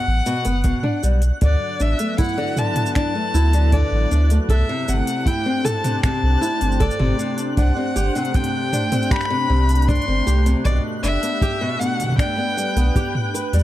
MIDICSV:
0, 0, Header, 1, 7, 480
1, 0, Start_track
1, 0, Tempo, 769231
1, 885, Time_signature, 4, 2, 24, 8
1, 8506, End_track
2, 0, Start_track
2, 0, Title_t, "Synth texture"
2, 0, Program_c, 0, 99
2, 0, Note_on_c, 0, 90, 81
2, 877, Note_off_c, 0, 90, 0
2, 884, Note_on_c, 0, 90, 83
2, 8506, Note_off_c, 0, 90, 0
2, 8506, End_track
3, 0, Start_track
3, 0, Title_t, "Violin"
3, 0, Program_c, 1, 40
3, 0, Note_on_c, 1, 78, 113
3, 620, Note_off_c, 1, 78, 0
3, 896, Note_on_c, 1, 74, 91
3, 1133, Note_on_c, 1, 76, 91
3, 1143, Note_off_c, 1, 74, 0
3, 1365, Note_off_c, 1, 76, 0
3, 1369, Note_on_c, 1, 78, 93
3, 1610, Note_on_c, 1, 81, 97
3, 1619, Note_off_c, 1, 78, 0
3, 1843, Note_off_c, 1, 81, 0
3, 1847, Note_on_c, 1, 81, 93
3, 2328, Note_on_c, 1, 74, 95
3, 2338, Note_off_c, 1, 81, 0
3, 2687, Note_off_c, 1, 74, 0
3, 2808, Note_on_c, 1, 76, 90
3, 3050, Note_on_c, 1, 78, 94
3, 3059, Note_off_c, 1, 76, 0
3, 3289, Note_on_c, 1, 79, 98
3, 3299, Note_off_c, 1, 78, 0
3, 3524, Note_on_c, 1, 81, 99
3, 3533, Note_off_c, 1, 79, 0
3, 3764, Note_off_c, 1, 81, 0
3, 3769, Note_on_c, 1, 81, 101
3, 4252, Note_on_c, 1, 74, 92
3, 4261, Note_off_c, 1, 81, 0
3, 4608, Note_off_c, 1, 74, 0
3, 4727, Note_on_c, 1, 78, 100
3, 5208, Note_on_c, 1, 79, 103
3, 5218, Note_off_c, 1, 78, 0
3, 5688, Note_on_c, 1, 83, 110
3, 5697, Note_off_c, 1, 79, 0
3, 6164, Note_on_c, 1, 84, 116
3, 6174, Note_off_c, 1, 83, 0
3, 6524, Note_off_c, 1, 84, 0
3, 6643, Note_on_c, 1, 74, 98
3, 6752, Note_off_c, 1, 74, 0
3, 6882, Note_on_c, 1, 76, 106
3, 7360, Note_on_c, 1, 78, 104
3, 7369, Note_off_c, 1, 76, 0
3, 7598, Note_off_c, 1, 78, 0
3, 7602, Note_on_c, 1, 79, 102
3, 8298, Note_off_c, 1, 79, 0
3, 8506, End_track
4, 0, Start_track
4, 0, Title_t, "Analog synth pad"
4, 0, Program_c, 2, 89
4, 885, Note_on_c, 2, 54, 79
4, 1065, Note_on_c, 2, 59, 68
4, 1368, Note_on_c, 2, 64, 92
4, 1751, Note_on_c, 2, 69, 82
4, 2801, Note_on_c, 2, 57, 74
4, 2803, Note_off_c, 2, 59, 0
4, 2805, Note_off_c, 2, 54, 0
4, 2935, Note_on_c, 2, 67, 75
4, 3141, Note_on_c, 2, 62, 78
4, 3343, Note_on_c, 2, 72, 93
4, 3569, Note_off_c, 2, 64, 0
4, 3574, Note_off_c, 2, 69, 0
4, 6646, Note_off_c, 2, 72, 0
4, 7515, Note_on_c, 2, 71, 91
4, 8506, Note_off_c, 2, 57, 0
4, 8506, Note_off_c, 2, 62, 0
4, 8506, Note_off_c, 2, 67, 0
4, 8506, Note_off_c, 2, 71, 0
4, 8506, End_track
5, 0, Start_track
5, 0, Title_t, "Nylon-string guitar"
5, 0, Program_c, 3, 24
5, 163, Note_on_c, 3, 47, 96
5, 272, Note_off_c, 3, 47, 0
5, 281, Note_on_c, 3, 59, 71
5, 391, Note_off_c, 3, 59, 0
5, 401, Note_on_c, 3, 47, 84
5, 511, Note_off_c, 3, 47, 0
5, 520, Note_on_c, 3, 62, 70
5, 631, Note_off_c, 3, 62, 0
5, 643, Note_on_c, 3, 55, 73
5, 752, Note_off_c, 3, 55, 0
5, 882, Note_on_c, 3, 50, 76
5, 1112, Note_off_c, 3, 50, 0
5, 1123, Note_on_c, 3, 62, 72
5, 1232, Note_off_c, 3, 62, 0
5, 1244, Note_on_c, 3, 57, 76
5, 1352, Note_off_c, 3, 57, 0
5, 1362, Note_on_c, 3, 64, 109
5, 1471, Note_off_c, 3, 64, 0
5, 1483, Note_on_c, 3, 50, 93
5, 1592, Note_off_c, 3, 50, 0
5, 1605, Note_on_c, 3, 50, 75
5, 1833, Note_off_c, 3, 50, 0
5, 1842, Note_on_c, 3, 62, 83
5, 1951, Note_off_c, 3, 62, 0
5, 1966, Note_on_c, 3, 57, 77
5, 2073, Note_off_c, 3, 57, 0
5, 2086, Note_on_c, 3, 64, 101
5, 2193, Note_off_c, 3, 64, 0
5, 2207, Note_on_c, 3, 50, 97
5, 2314, Note_off_c, 3, 50, 0
5, 2326, Note_on_c, 3, 50, 81
5, 2554, Note_off_c, 3, 50, 0
5, 2564, Note_on_c, 3, 62, 72
5, 2673, Note_off_c, 3, 62, 0
5, 2689, Note_on_c, 3, 57, 79
5, 2795, Note_off_c, 3, 57, 0
5, 2807, Note_on_c, 3, 69, 96
5, 2914, Note_off_c, 3, 69, 0
5, 2928, Note_on_c, 3, 48, 98
5, 3034, Note_off_c, 3, 48, 0
5, 3045, Note_on_c, 3, 48, 80
5, 3273, Note_off_c, 3, 48, 0
5, 3284, Note_on_c, 3, 64, 88
5, 3392, Note_off_c, 3, 64, 0
5, 3406, Note_on_c, 3, 60, 72
5, 3513, Note_off_c, 3, 60, 0
5, 3523, Note_on_c, 3, 69, 95
5, 3632, Note_off_c, 3, 69, 0
5, 3644, Note_on_c, 3, 48, 105
5, 3752, Note_off_c, 3, 48, 0
5, 3763, Note_on_c, 3, 48, 87
5, 3992, Note_off_c, 3, 48, 0
5, 4002, Note_on_c, 3, 64, 74
5, 4111, Note_off_c, 3, 64, 0
5, 4123, Note_on_c, 3, 60, 74
5, 4232, Note_off_c, 3, 60, 0
5, 4243, Note_on_c, 3, 69, 103
5, 4352, Note_off_c, 3, 69, 0
5, 4364, Note_on_c, 3, 48, 97
5, 4472, Note_off_c, 3, 48, 0
5, 4486, Note_on_c, 3, 48, 73
5, 4713, Note_off_c, 3, 48, 0
5, 4726, Note_on_c, 3, 62, 80
5, 4833, Note_off_c, 3, 62, 0
5, 4845, Note_on_c, 3, 60, 73
5, 4953, Note_off_c, 3, 60, 0
5, 4966, Note_on_c, 3, 67, 109
5, 5073, Note_off_c, 3, 67, 0
5, 5089, Note_on_c, 3, 48, 99
5, 5195, Note_off_c, 3, 48, 0
5, 5207, Note_on_c, 3, 48, 85
5, 5434, Note_off_c, 3, 48, 0
5, 5447, Note_on_c, 3, 62, 79
5, 5554, Note_off_c, 3, 62, 0
5, 5567, Note_on_c, 3, 60, 84
5, 5674, Note_off_c, 3, 60, 0
5, 5684, Note_on_c, 3, 67, 100
5, 5792, Note_off_c, 3, 67, 0
5, 5806, Note_on_c, 3, 48, 99
5, 5913, Note_off_c, 3, 48, 0
5, 5925, Note_on_c, 3, 48, 76
5, 6153, Note_off_c, 3, 48, 0
5, 6167, Note_on_c, 3, 62, 88
5, 6274, Note_off_c, 3, 62, 0
5, 6288, Note_on_c, 3, 60, 77
5, 6394, Note_off_c, 3, 60, 0
5, 6406, Note_on_c, 3, 67, 96
5, 6514, Note_off_c, 3, 67, 0
5, 6528, Note_on_c, 3, 48, 100
5, 6634, Note_off_c, 3, 48, 0
5, 6648, Note_on_c, 3, 47, 84
5, 6874, Note_off_c, 3, 47, 0
5, 6887, Note_on_c, 3, 62, 74
5, 6994, Note_off_c, 3, 62, 0
5, 7008, Note_on_c, 3, 59, 75
5, 7114, Note_off_c, 3, 59, 0
5, 7127, Note_on_c, 3, 67, 104
5, 7234, Note_off_c, 3, 67, 0
5, 7246, Note_on_c, 3, 47, 92
5, 7353, Note_off_c, 3, 47, 0
5, 7366, Note_on_c, 3, 47, 73
5, 7593, Note_off_c, 3, 47, 0
5, 7605, Note_on_c, 3, 62, 83
5, 7713, Note_off_c, 3, 62, 0
5, 7724, Note_on_c, 3, 59, 68
5, 7832, Note_off_c, 3, 59, 0
5, 7845, Note_on_c, 3, 55, 74
5, 7953, Note_off_c, 3, 55, 0
5, 7967, Note_on_c, 3, 59, 92
5, 8080, Note_off_c, 3, 59, 0
5, 8088, Note_on_c, 3, 67, 85
5, 8194, Note_off_c, 3, 67, 0
5, 8327, Note_on_c, 3, 71, 75
5, 8434, Note_off_c, 3, 71, 0
5, 8447, Note_on_c, 3, 55, 81
5, 8506, Note_off_c, 3, 55, 0
5, 8506, End_track
6, 0, Start_track
6, 0, Title_t, "Sub bass"
6, 0, Program_c, 4, 38
6, 46, Note_on_c, 4, 33, 93
6, 132, Note_off_c, 4, 33, 0
6, 285, Note_on_c, 4, 30, 99
6, 459, Note_off_c, 4, 30, 0
6, 644, Note_on_c, 4, 35, 84
6, 818, Note_off_c, 4, 35, 0
6, 885, Note_on_c, 4, 38, 103
6, 972, Note_off_c, 4, 38, 0
6, 1123, Note_on_c, 4, 33, 80
6, 1211, Note_off_c, 4, 33, 0
6, 2084, Note_on_c, 4, 38, 87
6, 2391, Note_off_c, 4, 38, 0
6, 2444, Note_on_c, 4, 33, 103
6, 2532, Note_off_c, 4, 33, 0
6, 2566, Note_on_c, 4, 38, 88
6, 2739, Note_off_c, 4, 38, 0
6, 2801, Note_on_c, 4, 36, 99
6, 2890, Note_off_c, 4, 36, 0
6, 3045, Note_on_c, 4, 31, 84
6, 3132, Note_off_c, 4, 31, 0
6, 3887, Note_on_c, 4, 36, 91
6, 3973, Note_off_c, 4, 36, 0
6, 4126, Note_on_c, 4, 31, 92
6, 4299, Note_off_c, 4, 31, 0
6, 4365, Note_on_c, 4, 31, 90
6, 4452, Note_off_c, 4, 31, 0
6, 4727, Note_on_c, 4, 36, 110
6, 4813, Note_off_c, 4, 36, 0
6, 4966, Note_on_c, 4, 31, 82
6, 5052, Note_off_c, 4, 31, 0
6, 5925, Note_on_c, 4, 36, 86
6, 6232, Note_off_c, 4, 36, 0
6, 6289, Note_on_c, 4, 31, 92
6, 6374, Note_off_c, 4, 31, 0
6, 6407, Note_on_c, 4, 36, 92
6, 6580, Note_off_c, 4, 36, 0
6, 6647, Note_on_c, 4, 35, 107
6, 6733, Note_off_c, 4, 35, 0
6, 6883, Note_on_c, 4, 30, 88
6, 6971, Note_off_c, 4, 30, 0
6, 7962, Note_on_c, 4, 35, 91
6, 8050, Note_off_c, 4, 35, 0
6, 8442, Note_on_c, 4, 40, 78
6, 8506, Note_off_c, 4, 40, 0
6, 8506, End_track
7, 0, Start_track
7, 0, Title_t, "Drums"
7, 164, Note_on_c, 9, 82, 66
7, 226, Note_off_c, 9, 82, 0
7, 279, Note_on_c, 9, 46, 57
7, 283, Note_on_c, 9, 82, 44
7, 342, Note_off_c, 9, 46, 0
7, 346, Note_off_c, 9, 82, 0
7, 398, Note_on_c, 9, 46, 53
7, 402, Note_on_c, 9, 36, 102
7, 402, Note_on_c, 9, 82, 35
7, 461, Note_off_c, 9, 46, 0
7, 464, Note_off_c, 9, 36, 0
7, 465, Note_off_c, 9, 82, 0
7, 519, Note_on_c, 9, 45, 70
7, 581, Note_off_c, 9, 45, 0
7, 645, Note_on_c, 9, 82, 76
7, 707, Note_off_c, 9, 82, 0
7, 760, Note_on_c, 9, 46, 55
7, 764, Note_on_c, 9, 82, 40
7, 822, Note_off_c, 9, 46, 0
7, 826, Note_off_c, 9, 82, 0
7, 881, Note_on_c, 9, 46, 48
7, 885, Note_on_c, 9, 36, 107
7, 885, Note_on_c, 9, 82, 34
7, 944, Note_off_c, 9, 46, 0
7, 947, Note_off_c, 9, 36, 0
7, 948, Note_off_c, 9, 82, 0
7, 1124, Note_on_c, 9, 82, 70
7, 1186, Note_off_c, 9, 82, 0
7, 1242, Note_on_c, 9, 46, 62
7, 1246, Note_on_c, 9, 82, 46
7, 1304, Note_off_c, 9, 46, 0
7, 1308, Note_off_c, 9, 82, 0
7, 1362, Note_on_c, 9, 46, 47
7, 1365, Note_on_c, 9, 36, 96
7, 1366, Note_on_c, 9, 82, 30
7, 1396, Note_off_c, 9, 82, 0
7, 1396, Note_on_c, 9, 82, 27
7, 1424, Note_off_c, 9, 46, 0
7, 1427, Note_off_c, 9, 36, 0
7, 1427, Note_off_c, 9, 82, 0
7, 1427, Note_on_c, 9, 82, 24
7, 1456, Note_off_c, 9, 82, 0
7, 1456, Note_on_c, 9, 82, 19
7, 1486, Note_off_c, 9, 82, 0
7, 1486, Note_on_c, 9, 82, 14
7, 1517, Note_off_c, 9, 82, 0
7, 1517, Note_on_c, 9, 82, 11
7, 1545, Note_off_c, 9, 82, 0
7, 1545, Note_on_c, 9, 82, 9
7, 1574, Note_off_c, 9, 82, 0
7, 1574, Note_on_c, 9, 82, 8
7, 1601, Note_on_c, 9, 45, 72
7, 1605, Note_off_c, 9, 82, 0
7, 1605, Note_on_c, 9, 82, 76
7, 1664, Note_off_c, 9, 45, 0
7, 1668, Note_off_c, 9, 82, 0
7, 1721, Note_on_c, 9, 45, 78
7, 1721, Note_on_c, 9, 46, 61
7, 1783, Note_off_c, 9, 45, 0
7, 1783, Note_off_c, 9, 46, 0
7, 1785, Note_on_c, 9, 82, 45
7, 1843, Note_on_c, 9, 26, 79
7, 1843, Note_on_c, 9, 46, 46
7, 1846, Note_on_c, 9, 36, 99
7, 1847, Note_off_c, 9, 82, 0
7, 1847, Note_on_c, 9, 82, 34
7, 1905, Note_off_c, 9, 26, 0
7, 1905, Note_off_c, 9, 46, 0
7, 1908, Note_off_c, 9, 36, 0
7, 1909, Note_off_c, 9, 82, 0
7, 2088, Note_on_c, 9, 82, 73
7, 2151, Note_off_c, 9, 82, 0
7, 2204, Note_on_c, 9, 46, 55
7, 2208, Note_on_c, 9, 82, 43
7, 2267, Note_off_c, 9, 46, 0
7, 2271, Note_off_c, 9, 82, 0
7, 2323, Note_on_c, 9, 46, 53
7, 2324, Note_on_c, 9, 36, 92
7, 2328, Note_on_c, 9, 82, 38
7, 2386, Note_off_c, 9, 36, 0
7, 2386, Note_off_c, 9, 46, 0
7, 2390, Note_off_c, 9, 82, 0
7, 2569, Note_on_c, 9, 82, 73
7, 2631, Note_off_c, 9, 82, 0
7, 2684, Note_on_c, 9, 46, 59
7, 2688, Note_on_c, 9, 82, 43
7, 2747, Note_off_c, 9, 46, 0
7, 2751, Note_off_c, 9, 82, 0
7, 2801, Note_on_c, 9, 36, 90
7, 2805, Note_on_c, 9, 46, 49
7, 2809, Note_on_c, 9, 82, 34
7, 2863, Note_off_c, 9, 36, 0
7, 2867, Note_off_c, 9, 46, 0
7, 2872, Note_off_c, 9, 82, 0
7, 3047, Note_on_c, 9, 82, 75
7, 3110, Note_off_c, 9, 82, 0
7, 3165, Note_on_c, 9, 46, 60
7, 3169, Note_on_c, 9, 82, 47
7, 3228, Note_off_c, 9, 46, 0
7, 3232, Note_off_c, 9, 82, 0
7, 3281, Note_on_c, 9, 36, 93
7, 3286, Note_on_c, 9, 46, 47
7, 3290, Note_on_c, 9, 82, 36
7, 3344, Note_off_c, 9, 36, 0
7, 3348, Note_off_c, 9, 46, 0
7, 3352, Note_off_c, 9, 82, 0
7, 3525, Note_on_c, 9, 45, 68
7, 3529, Note_on_c, 9, 82, 81
7, 3587, Note_off_c, 9, 45, 0
7, 3591, Note_off_c, 9, 82, 0
7, 3646, Note_on_c, 9, 45, 77
7, 3646, Note_on_c, 9, 46, 61
7, 3651, Note_on_c, 9, 82, 50
7, 3709, Note_off_c, 9, 45, 0
7, 3709, Note_off_c, 9, 46, 0
7, 3713, Note_off_c, 9, 82, 0
7, 3766, Note_on_c, 9, 26, 89
7, 3766, Note_on_c, 9, 46, 48
7, 3767, Note_on_c, 9, 36, 108
7, 3770, Note_on_c, 9, 82, 33
7, 3828, Note_off_c, 9, 26, 0
7, 3828, Note_off_c, 9, 46, 0
7, 3829, Note_off_c, 9, 36, 0
7, 3832, Note_off_c, 9, 82, 0
7, 4010, Note_on_c, 9, 82, 73
7, 4072, Note_off_c, 9, 82, 0
7, 4125, Note_on_c, 9, 46, 52
7, 4129, Note_on_c, 9, 82, 21
7, 4188, Note_off_c, 9, 46, 0
7, 4191, Note_off_c, 9, 82, 0
7, 4191, Note_on_c, 9, 82, 26
7, 4246, Note_on_c, 9, 46, 50
7, 4247, Note_on_c, 9, 36, 108
7, 4250, Note_off_c, 9, 82, 0
7, 4250, Note_on_c, 9, 82, 38
7, 4308, Note_off_c, 9, 46, 0
7, 4309, Note_off_c, 9, 36, 0
7, 4311, Note_off_c, 9, 82, 0
7, 4311, Note_on_c, 9, 82, 45
7, 4366, Note_on_c, 9, 45, 78
7, 4373, Note_off_c, 9, 82, 0
7, 4429, Note_off_c, 9, 45, 0
7, 4489, Note_on_c, 9, 82, 81
7, 4552, Note_off_c, 9, 82, 0
7, 4604, Note_on_c, 9, 46, 55
7, 4608, Note_on_c, 9, 82, 45
7, 4666, Note_off_c, 9, 46, 0
7, 4671, Note_off_c, 9, 82, 0
7, 4726, Note_on_c, 9, 36, 113
7, 4726, Note_on_c, 9, 46, 44
7, 4730, Note_on_c, 9, 82, 34
7, 4788, Note_off_c, 9, 46, 0
7, 4789, Note_off_c, 9, 36, 0
7, 4792, Note_off_c, 9, 82, 0
7, 4970, Note_on_c, 9, 82, 82
7, 5032, Note_off_c, 9, 82, 0
7, 5088, Note_on_c, 9, 46, 27
7, 5092, Note_on_c, 9, 82, 50
7, 5146, Note_off_c, 9, 46, 0
7, 5146, Note_on_c, 9, 46, 31
7, 5154, Note_off_c, 9, 82, 0
7, 5206, Note_off_c, 9, 46, 0
7, 5206, Note_on_c, 9, 46, 45
7, 5208, Note_on_c, 9, 36, 104
7, 5210, Note_on_c, 9, 82, 36
7, 5266, Note_off_c, 9, 46, 0
7, 5266, Note_on_c, 9, 46, 47
7, 5270, Note_off_c, 9, 36, 0
7, 5273, Note_off_c, 9, 82, 0
7, 5328, Note_off_c, 9, 46, 0
7, 5446, Note_on_c, 9, 45, 70
7, 5450, Note_on_c, 9, 82, 79
7, 5508, Note_off_c, 9, 45, 0
7, 5512, Note_off_c, 9, 82, 0
7, 5566, Note_on_c, 9, 45, 76
7, 5566, Note_on_c, 9, 46, 58
7, 5570, Note_on_c, 9, 82, 45
7, 5628, Note_off_c, 9, 45, 0
7, 5628, Note_off_c, 9, 46, 0
7, 5630, Note_off_c, 9, 82, 0
7, 5630, Note_on_c, 9, 82, 38
7, 5685, Note_on_c, 9, 36, 117
7, 5687, Note_on_c, 9, 26, 78
7, 5687, Note_on_c, 9, 46, 42
7, 5691, Note_off_c, 9, 82, 0
7, 5691, Note_on_c, 9, 82, 34
7, 5716, Note_off_c, 9, 26, 0
7, 5716, Note_on_c, 9, 26, 65
7, 5745, Note_off_c, 9, 26, 0
7, 5745, Note_on_c, 9, 26, 53
7, 5748, Note_off_c, 9, 36, 0
7, 5749, Note_off_c, 9, 46, 0
7, 5749, Note_off_c, 9, 82, 0
7, 5749, Note_on_c, 9, 82, 25
7, 5774, Note_off_c, 9, 26, 0
7, 5774, Note_on_c, 9, 26, 43
7, 5812, Note_off_c, 9, 82, 0
7, 5837, Note_off_c, 9, 26, 0
7, 6046, Note_on_c, 9, 46, 51
7, 6051, Note_on_c, 9, 82, 46
7, 6086, Note_off_c, 9, 46, 0
7, 6086, Note_on_c, 9, 46, 41
7, 6113, Note_off_c, 9, 82, 0
7, 6129, Note_off_c, 9, 46, 0
7, 6129, Note_on_c, 9, 46, 35
7, 6169, Note_on_c, 9, 36, 122
7, 6170, Note_off_c, 9, 46, 0
7, 6170, Note_on_c, 9, 46, 30
7, 6174, Note_on_c, 9, 82, 38
7, 6211, Note_off_c, 9, 46, 0
7, 6211, Note_on_c, 9, 46, 25
7, 6232, Note_off_c, 9, 36, 0
7, 6236, Note_off_c, 9, 82, 0
7, 6250, Note_off_c, 9, 46, 0
7, 6250, Note_on_c, 9, 46, 23
7, 6312, Note_off_c, 9, 46, 0
7, 6412, Note_on_c, 9, 82, 78
7, 6474, Note_off_c, 9, 82, 0
7, 6528, Note_on_c, 9, 46, 53
7, 6532, Note_on_c, 9, 82, 43
7, 6590, Note_off_c, 9, 46, 0
7, 6594, Note_off_c, 9, 82, 0
7, 6647, Note_on_c, 9, 36, 90
7, 6647, Note_on_c, 9, 46, 44
7, 6651, Note_on_c, 9, 82, 38
7, 6709, Note_off_c, 9, 36, 0
7, 6709, Note_off_c, 9, 46, 0
7, 6713, Note_off_c, 9, 82, 0
7, 6889, Note_on_c, 9, 82, 73
7, 6952, Note_off_c, 9, 82, 0
7, 7007, Note_on_c, 9, 46, 55
7, 7011, Note_on_c, 9, 82, 48
7, 7070, Note_off_c, 9, 46, 0
7, 7074, Note_off_c, 9, 82, 0
7, 7124, Note_on_c, 9, 36, 102
7, 7127, Note_on_c, 9, 46, 44
7, 7131, Note_on_c, 9, 82, 37
7, 7186, Note_off_c, 9, 36, 0
7, 7190, Note_off_c, 9, 46, 0
7, 7194, Note_off_c, 9, 82, 0
7, 7371, Note_on_c, 9, 82, 76
7, 7433, Note_off_c, 9, 82, 0
7, 7487, Note_on_c, 9, 45, 35
7, 7487, Note_on_c, 9, 46, 53
7, 7491, Note_on_c, 9, 82, 47
7, 7505, Note_off_c, 9, 45, 0
7, 7505, Note_on_c, 9, 45, 45
7, 7527, Note_off_c, 9, 45, 0
7, 7527, Note_on_c, 9, 45, 46
7, 7546, Note_off_c, 9, 45, 0
7, 7546, Note_on_c, 9, 45, 56
7, 7550, Note_off_c, 9, 46, 0
7, 7554, Note_off_c, 9, 82, 0
7, 7565, Note_off_c, 9, 45, 0
7, 7565, Note_on_c, 9, 45, 67
7, 7587, Note_off_c, 9, 45, 0
7, 7587, Note_on_c, 9, 45, 72
7, 7603, Note_on_c, 9, 36, 111
7, 7608, Note_on_c, 9, 26, 77
7, 7608, Note_on_c, 9, 46, 46
7, 7612, Note_on_c, 9, 82, 35
7, 7649, Note_off_c, 9, 45, 0
7, 7666, Note_off_c, 9, 36, 0
7, 7671, Note_off_c, 9, 26, 0
7, 7671, Note_off_c, 9, 46, 0
7, 7675, Note_off_c, 9, 82, 0
7, 7850, Note_on_c, 9, 82, 73
7, 7912, Note_off_c, 9, 82, 0
7, 7967, Note_on_c, 9, 46, 53
7, 7971, Note_on_c, 9, 82, 45
7, 8029, Note_off_c, 9, 46, 0
7, 8033, Note_off_c, 9, 82, 0
7, 8085, Note_on_c, 9, 36, 103
7, 8086, Note_on_c, 9, 46, 48
7, 8090, Note_on_c, 9, 82, 39
7, 8147, Note_off_c, 9, 36, 0
7, 8149, Note_off_c, 9, 46, 0
7, 8153, Note_off_c, 9, 82, 0
7, 8206, Note_on_c, 9, 45, 72
7, 8268, Note_off_c, 9, 45, 0
7, 8330, Note_on_c, 9, 82, 84
7, 8393, Note_off_c, 9, 82, 0
7, 8445, Note_on_c, 9, 46, 51
7, 8449, Note_on_c, 9, 82, 39
7, 8479, Note_off_c, 9, 82, 0
7, 8479, Note_on_c, 9, 82, 34
7, 8506, Note_off_c, 9, 46, 0
7, 8506, Note_off_c, 9, 82, 0
7, 8506, End_track
0, 0, End_of_file